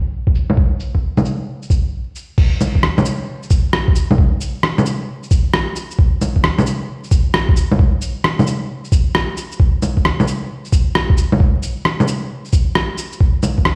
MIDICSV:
0, 0, Header, 1, 2, 480
1, 0, Start_track
1, 0, Tempo, 451128
1, 612, Time_signature, 4, 2, 24, 8
1, 14632, End_track
2, 0, Start_track
2, 0, Title_t, "Drums"
2, 287, Note_on_c, 9, 36, 93
2, 371, Note_on_c, 9, 82, 51
2, 393, Note_off_c, 9, 36, 0
2, 477, Note_off_c, 9, 82, 0
2, 528, Note_on_c, 9, 61, 48
2, 609, Note_on_c, 9, 36, 111
2, 635, Note_off_c, 9, 61, 0
2, 716, Note_off_c, 9, 36, 0
2, 850, Note_on_c, 9, 82, 47
2, 956, Note_off_c, 9, 82, 0
2, 1007, Note_on_c, 9, 36, 54
2, 1113, Note_off_c, 9, 36, 0
2, 1249, Note_on_c, 9, 61, 57
2, 1249, Note_on_c, 9, 82, 29
2, 1332, Note_off_c, 9, 82, 0
2, 1332, Note_on_c, 9, 82, 49
2, 1355, Note_off_c, 9, 61, 0
2, 1438, Note_off_c, 9, 82, 0
2, 1728, Note_on_c, 9, 82, 27
2, 1810, Note_on_c, 9, 36, 97
2, 1812, Note_off_c, 9, 82, 0
2, 1812, Note_on_c, 9, 82, 52
2, 1916, Note_off_c, 9, 36, 0
2, 1918, Note_off_c, 9, 82, 0
2, 2293, Note_on_c, 9, 82, 52
2, 2399, Note_off_c, 9, 82, 0
2, 2530, Note_on_c, 9, 36, 116
2, 2530, Note_on_c, 9, 49, 99
2, 2636, Note_off_c, 9, 36, 0
2, 2637, Note_off_c, 9, 49, 0
2, 2774, Note_on_c, 9, 61, 37
2, 2774, Note_on_c, 9, 69, 68
2, 2774, Note_on_c, 9, 82, 57
2, 2880, Note_off_c, 9, 61, 0
2, 2880, Note_off_c, 9, 69, 0
2, 2880, Note_off_c, 9, 82, 0
2, 2927, Note_on_c, 9, 36, 60
2, 3012, Note_on_c, 9, 37, 101
2, 3034, Note_off_c, 9, 36, 0
2, 3118, Note_off_c, 9, 37, 0
2, 3170, Note_on_c, 9, 61, 66
2, 3170, Note_on_c, 9, 82, 31
2, 3250, Note_off_c, 9, 82, 0
2, 3250, Note_on_c, 9, 69, 74
2, 3250, Note_on_c, 9, 82, 58
2, 3276, Note_off_c, 9, 61, 0
2, 3357, Note_off_c, 9, 69, 0
2, 3357, Note_off_c, 9, 82, 0
2, 3649, Note_on_c, 9, 82, 33
2, 3729, Note_off_c, 9, 82, 0
2, 3729, Note_on_c, 9, 69, 75
2, 3729, Note_on_c, 9, 82, 61
2, 3730, Note_on_c, 9, 36, 110
2, 3835, Note_off_c, 9, 69, 0
2, 3835, Note_off_c, 9, 82, 0
2, 3836, Note_off_c, 9, 36, 0
2, 3969, Note_on_c, 9, 37, 102
2, 4076, Note_off_c, 9, 37, 0
2, 4128, Note_on_c, 9, 36, 103
2, 4210, Note_on_c, 9, 69, 75
2, 4210, Note_on_c, 9, 82, 59
2, 4234, Note_off_c, 9, 36, 0
2, 4316, Note_off_c, 9, 69, 0
2, 4316, Note_off_c, 9, 82, 0
2, 4369, Note_on_c, 9, 61, 59
2, 4450, Note_on_c, 9, 36, 119
2, 4475, Note_off_c, 9, 61, 0
2, 4556, Note_off_c, 9, 36, 0
2, 4690, Note_on_c, 9, 69, 67
2, 4690, Note_on_c, 9, 82, 55
2, 4797, Note_off_c, 9, 69, 0
2, 4797, Note_off_c, 9, 82, 0
2, 4929, Note_on_c, 9, 37, 105
2, 5035, Note_off_c, 9, 37, 0
2, 5089, Note_on_c, 9, 61, 66
2, 5089, Note_on_c, 9, 82, 35
2, 5171, Note_off_c, 9, 82, 0
2, 5171, Note_on_c, 9, 69, 75
2, 5171, Note_on_c, 9, 82, 60
2, 5195, Note_off_c, 9, 61, 0
2, 5277, Note_off_c, 9, 69, 0
2, 5277, Note_off_c, 9, 82, 0
2, 5568, Note_on_c, 9, 82, 32
2, 5650, Note_off_c, 9, 82, 0
2, 5650, Note_on_c, 9, 36, 110
2, 5650, Note_on_c, 9, 69, 72
2, 5650, Note_on_c, 9, 82, 59
2, 5756, Note_off_c, 9, 36, 0
2, 5757, Note_off_c, 9, 69, 0
2, 5757, Note_off_c, 9, 82, 0
2, 5889, Note_on_c, 9, 37, 113
2, 5996, Note_off_c, 9, 37, 0
2, 6129, Note_on_c, 9, 69, 74
2, 6129, Note_on_c, 9, 82, 60
2, 6236, Note_off_c, 9, 69, 0
2, 6236, Note_off_c, 9, 82, 0
2, 6287, Note_on_c, 9, 69, 44
2, 6369, Note_on_c, 9, 36, 123
2, 6394, Note_off_c, 9, 69, 0
2, 6475, Note_off_c, 9, 36, 0
2, 6612, Note_on_c, 9, 61, 34
2, 6612, Note_on_c, 9, 69, 67
2, 6612, Note_on_c, 9, 82, 57
2, 6718, Note_off_c, 9, 61, 0
2, 6718, Note_off_c, 9, 69, 0
2, 6718, Note_off_c, 9, 82, 0
2, 6766, Note_on_c, 9, 36, 65
2, 6850, Note_on_c, 9, 37, 113
2, 6872, Note_off_c, 9, 36, 0
2, 6956, Note_off_c, 9, 37, 0
2, 7006, Note_on_c, 9, 61, 65
2, 7006, Note_on_c, 9, 82, 33
2, 7092, Note_off_c, 9, 82, 0
2, 7092, Note_on_c, 9, 69, 70
2, 7092, Note_on_c, 9, 82, 60
2, 7113, Note_off_c, 9, 61, 0
2, 7198, Note_off_c, 9, 69, 0
2, 7198, Note_off_c, 9, 82, 0
2, 7489, Note_on_c, 9, 82, 31
2, 7569, Note_on_c, 9, 36, 112
2, 7570, Note_off_c, 9, 82, 0
2, 7570, Note_on_c, 9, 69, 70
2, 7570, Note_on_c, 9, 82, 59
2, 7675, Note_off_c, 9, 36, 0
2, 7676, Note_off_c, 9, 69, 0
2, 7676, Note_off_c, 9, 82, 0
2, 7808, Note_on_c, 9, 37, 114
2, 7915, Note_off_c, 9, 37, 0
2, 7967, Note_on_c, 9, 36, 112
2, 8049, Note_on_c, 9, 69, 73
2, 8049, Note_on_c, 9, 82, 59
2, 8074, Note_off_c, 9, 36, 0
2, 8156, Note_off_c, 9, 69, 0
2, 8156, Note_off_c, 9, 82, 0
2, 8208, Note_on_c, 9, 61, 54
2, 8290, Note_on_c, 9, 36, 126
2, 8315, Note_off_c, 9, 61, 0
2, 8397, Note_off_c, 9, 36, 0
2, 8530, Note_on_c, 9, 69, 70
2, 8530, Note_on_c, 9, 82, 55
2, 8636, Note_off_c, 9, 69, 0
2, 8636, Note_off_c, 9, 82, 0
2, 8770, Note_on_c, 9, 37, 109
2, 8877, Note_off_c, 9, 37, 0
2, 8930, Note_on_c, 9, 61, 61
2, 8930, Note_on_c, 9, 82, 31
2, 9012, Note_off_c, 9, 82, 0
2, 9012, Note_on_c, 9, 69, 72
2, 9012, Note_on_c, 9, 82, 55
2, 9036, Note_off_c, 9, 61, 0
2, 9118, Note_off_c, 9, 69, 0
2, 9118, Note_off_c, 9, 82, 0
2, 9411, Note_on_c, 9, 82, 31
2, 9491, Note_on_c, 9, 36, 112
2, 9494, Note_off_c, 9, 82, 0
2, 9494, Note_on_c, 9, 69, 71
2, 9494, Note_on_c, 9, 82, 55
2, 9597, Note_off_c, 9, 36, 0
2, 9600, Note_off_c, 9, 69, 0
2, 9600, Note_off_c, 9, 82, 0
2, 9733, Note_on_c, 9, 37, 105
2, 9839, Note_off_c, 9, 37, 0
2, 9972, Note_on_c, 9, 69, 73
2, 9972, Note_on_c, 9, 82, 58
2, 10078, Note_off_c, 9, 69, 0
2, 10078, Note_off_c, 9, 82, 0
2, 10128, Note_on_c, 9, 69, 45
2, 10210, Note_on_c, 9, 36, 123
2, 10235, Note_off_c, 9, 69, 0
2, 10316, Note_off_c, 9, 36, 0
2, 10452, Note_on_c, 9, 61, 34
2, 10452, Note_on_c, 9, 69, 74
2, 10452, Note_on_c, 9, 82, 52
2, 10559, Note_off_c, 9, 61, 0
2, 10559, Note_off_c, 9, 69, 0
2, 10559, Note_off_c, 9, 82, 0
2, 10608, Note_on_c, 9, 36, 61
2, 10694, Note_on_c, 9, 37, 104
2, 10714, Note_off_c, 9, 36, 0
2, 10800, Note_off_c, 9, 37, 0
2, 10852, Note_on_c, 9, 61, 64
2, 10852, Note_on_c, 9, 82, 29
2, 10934, Note_off_c, 9, 82, 0
2, 10934, Note_on_c, 9, 69, 77
2, 10934, Note_on_c, 9, 82, 54
2, 10958, Note_off_c, 9, 61, 0
2, 11041, Note_off_c, 9, 69, 0
2, 11041, Note_off_c, 9, 82, 0
2, 11331, Note_on_c, 9, 82, 30
2, 11411, Note_on_c, 9, 36, 100
2, 11413, Note_off_c, 9, 82, 0
2, 11413, Note_on_c, 9, 69, 77
2, 11413, Note_on_c, 9, 82, 54
2, 11517, Note_off_c, 9, 36, 0
2, 11519, Note_off_c, 9, 69, 0
2, 11519, Note_off_c, 9, 82, 0
2, 11652, Note_on_c, 9, 37, 106
2, 11759, Note_off_c, 9, 37, 0
2, 11808, Note_on_c, 9, 36, 104
2, 11891, Note_on_c, 9, 69, 76
2, 11891, Note_on_c, 9, 82, 56
2, 11914, Note_off_c, 9, 36, 0
2, 11998, Note_off_c, 9, 69, 0
2, 11998, Note_off_c, 9, 82, 0
2, 12047, Note_on_c, 9, 61, 54
2, 12130, Note_on_c, 9, 36, 115
2, 12154, Note_off_c, 9, 61, 0
2, 12237, Note_off_c, 9, 36, 0
2, 12372, Note_on_c, 9, 69, 77
2, 12372, Note_on_c, 9, 82, 53
2, 12478, Note_off_c, 9, 69, 0
2, 12478, Note_off_c, 9, 82, 0
2, 12610, Note_on_c, 9, 37, 98
2, 12716, Note_off_c, 9, 37, 0
2, 12769, Note_on_c, 9, 61, 65
2, 12769, Note_on_c, 9, 82, 30
2, 12851, Note_off_c, 9, 82, 0
2, 12851, Note_on_c, 9, 69, 77
2, 12851, Note_on_c, 9, 82, 54
2, 12876, Note_off_c, 9, 61, 0
2, 12957, Note_off_c, 9, 69, 0
2, 12957, Note_off_c, 9, 82, 0
2, 13247, Note_on_c, 9, 82, 30
2, 13329, Note_off_c, 9, 82, 0
2, 13329, Note_on_c, 9, 69, 80
2, 13329, Note_on_c, 9, 82, 53
2, 13330, Note_on_c, 9, 36, 106
2, 13436, Note_off_c, 9, 69, 0
2, 13436, Note_off_c, 9, 82, 0
2, 13437, Note_off_c, 9, 36, 0
2, 13569, Note_on_c, 9, 37, 105
2, 13676, Note_off_c, 9, 37, 0
2, 13809, Note_on_c, 9, 69, 82
2, 13809, Note_on_c, 9, 82, 53
2, 13915, Note_off_c, 9, 69, 0
2, 13915, Note_off_c, 9, 82, 0
2, 13966, Note_on_c, 9, 69, 46
2, 14050, Note_on_c, 9, 36, 115
2, 14072, Note_off_c, 9, 69, 0
2, 14156, Note_off_c, 9, 36, 0
2, 14287, Note_on_c, 9, 61, 37
2, 14287, Note_on_c, 9, 69, 77
2, 14287, Note_on_c, 9, 82, 52
2, 14394, Note_off_c, 9, 61, 0
2, 14394, Note_off_c, 9, 69, 0
2, 14394, Note_off_c, 9, 82, 0
2, 14447, Note_on_c, 9, 36, 59
2, 14526, Note_on_c, 9, 37, 99
2, 14553, Note_off_c, 9, 36, 0
2, 14632, Note_off_c, 9, 37, 0
2, 14632, End_track
0, 0, End_of_file